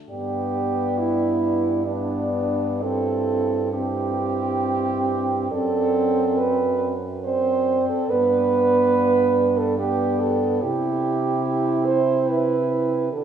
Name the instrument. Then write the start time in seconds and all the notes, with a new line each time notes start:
french horn
0.09 G2 B3 G4 D5
0.99 E4
1.86 B3 D4 D5
2.82 C4 E4 A4
3.73 C4 E4 G4
5.51 F#2 C4 A4 D5
6.38 B4
7.25 C4 C5 D5
7.89 A4
8.10 G2 B3 B4 D5
9.58 A4
9.79 B3 G4 D5
10.20 A4
10.62 C3 E4 G4
11.86 C5
12.29 B4
13.12 D3 D4 F#4 A4